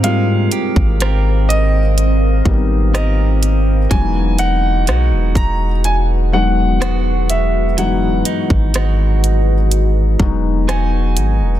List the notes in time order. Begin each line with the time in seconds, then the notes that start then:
Already playing: G#2 G3 A#3 C4 D#4 G4 A#4
0.03 G3 G#3 A#3 C4 F4 F5, closed hi-hat
0.52 G4, closed hi-hat
0.76 G#1, kick
1.00 C4 G4 A#4, cross-stick, closed hi-hat
1.49 D#5, closed hi-hat
1.98 closed hi-hat
2.45 G#1 G3 A#3 B3 D#4, kick
2.53 C4
2.94 C4 G4 A#4 D#5, cross-stick, closed hi-hat
3.43 closed hi-hat
3.90 E1 E3 F#3 G#3 B3 C#4 F#4 B4 F#5 G#5, kick, closed hi-hat
3.99 D#4
4.38 D#4 F#5, closed hi-hat
4.87 B1 G#3 D#4 F#4, cross-stick, closed hi-hat
5.12 E1
5.35 E1 A#5, kick, closed hi-hat
5.84 G#5, closed hi-hat
6.32 D#3 F#3 G#3 B3 F#5
6.81 G#3 F#4, cross-stick, closed hi-hat
7.30 E5, closed hi-hat
7.77 E3 F#3 G#3 B3 D#4 F#5, closed hi-hat
8.25 D#4, closed hi-hat
8.50 G#1, kick
8.74 G#3 D#4 F#4, cross-stick, closed hi-hat
9.24 closed hi-hat
9.71 closed hi-hat
10.19 E1 F#3 G#3 B3 D#4, kick
10.68 G#3 D#4 F#4 G#5, cross-stick, closed hi-hat
11.17 G#1, closed hi-hat
11.41 E1